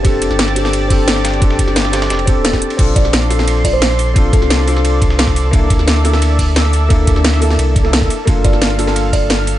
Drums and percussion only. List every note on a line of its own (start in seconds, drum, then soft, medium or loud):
0.05 kick loud
0.05 closed hi-hat medium
0.05 ride medium
0.22 closed hi-hat loud
0.22 ride medium
0.31 snare soft
0.39 snare loud
0.39 closed hi-hat medium
0.39 ride medium
0.48 snare soft
0.48 ride soft
0.56 closed hi-hat loud
0.56 ride medium
0.65 snare soft
0.65 snare medium
0.73 closed hi-hat medium
0.73 ride medium
0.90 kick loud
0.90 closed hi-hat loud
0.90 open hi-hat medium
1.08 snare loud
1.08 closed hi-hat medium
1.08 ride medium
1.16 snare soft
1.25 snare loud
1.25 closed hi-hat medium
1.25 ride medium
1.34 ride soft
1.42 kick loud
1.42 closed hi-hat medium
1.42 ride medium
1.50 snare medium
1.59 kick medium
1.59 closed hi-hat loud
1.59 ride medium
1.68 snare soft
1.76 snare loud
1.76 closed hi-hat medium
1.76 ride medium
1.85 snare medium
1.85 snare soft
1.93 snare loud
1.93 closed hi-hat loud
1.93 ride medium
2.02 snare loud
2.02 ride medium
2.10 snare loud
2.10 closed hi-hat medium
2.10 ride medium
2.19 ride medium
2.27 kick loud
2.27 closed hi-hat loud
2.27 ride medium
2.45 snare loud
2.45 closed hi-hat medium
2.53 kick medium
2.53 snare soft
2.62 closed hi-hat loud
2.70 ride medium
2.79 kick loud
2.79 closed hi-hat medium
2.79 crash loud
2.79 ride medium
2.96 kick loud
2.96 closed hi-hat loud
2.96 ride medium
3.05 snare soft
3.13 snare loud
3.13 closed hi-hat medium
3.13 ride medium
3.22 ride soft
3.30 snare soft
3.30 open hi-hat medium
3.30 ride medium
3.39 snare soft
3.39 snare medium
3.39 snare soft
3.48 closed hi-hat medium
3.48 ride loud
3.64 kick medium
3.64 closed hi-hat medium
3.64 open hi-hat medium
3.82 snare loud
3.82 closed hi-hat medium
3.82 ride loud
3.90 snare soft
3.99 open hi-hat medium
3.99 ride medium
4.16 kick loud
4.16 closed hi-hat medium
4.16 ride medium
4.33 kick loud
4.33 closed hi-hat medium
4.33 ride medium
4.42 snare soft
4.50 snare loud
4.50 closed hi-hat medium
4.50 ride medium
4.59 snare medium
4.67 open hi-hat medium
4.67 ride medium
4.76 snare soft
4.85 closed hi-hat medium
4.85 ride loud
5.02 kick loud
5.02 closed hi-hat loud
5.02 ride medium
5.10 snare medium
5.19 snare loud
5.19 closed hi-hat medium
5.19 ride medium
5.27 kick medium
5.27 snare medium
5.36 open hi-hat medium
5.36 ride medium
5.53 kick loud
5.53 closed hi-hat medium
5.53 ride medium
5.70 kick loud
5.70 closed hi-hat medium
5.70 ride medium
5.79 snare soft
5.88 snare loud
5.88 closed hi-hat medium
5.88 ride medium
5.96 ride soft
6.05 snare soft
6.05 open hi-hat medium
6.05 ride medium
6.13 snare soft
6.13 snare medium
6.13 snare soft
6.22 closed hi-hat medium
6.22 ride loud
6.39 kick medium
6.39 closed hi-hat medium
6.39 open hi-hat medium
6.56 snare loud
6.56 closed hi-hat medium
6.56 ride medium
6.65 snare soft
6.73 open hi-hat medium
6.73 ride medium
6.90 kick loud
6.90 closed hi-hat medium
6.90 ride medium
7.07 kick loud
7.07 closed hi-hat medium
7.07 ride medium
7.16 snare soft
7.24 snare loud
7.24 closed hi-hat medium
7.24 ride medium
7.34 snare medium
7.42 open hi-hat medium
7.42 ride medium
7.50 snare soft
7.59 closed hi-hat medium
7.59 ride medium
7.76 kick loud
7.76 closed hi-hat medium
7.76 ride medium
7.85 snare medium
7.93 snare loud
7.93 closed hi-hat medium
7.93 ride medium
8.02 kick medium
8.02 snare medium
8.10 open hi-hat medium
8.10 ride medium
8.27 kick loud
8.27 closed hi-hat medium
8.27 ride medium
8.44 kick loud
8.44 closed hi-hat medium
8.44 ride medium
8.53 snare soft
8.62 snare loud
8.62 closed hi-hat medium
8.62 ride medium
8.70 ride soft
8.79 snare soft
8.79 open hi-hat medium
8.79 ride medium
8.87 snare medium
8.87 snare soft
8.96 closed hi-hat medium
8.96 ride loud
9.13 kick medium
9.13 closed hi-hat medium
9.13 open hi-hat medium
9.30 snare loud
9.30 closed hi-hat medium
9.30 ride medium
9.39 snare soft
9.47 open hi-hat medium
9.47 ride medium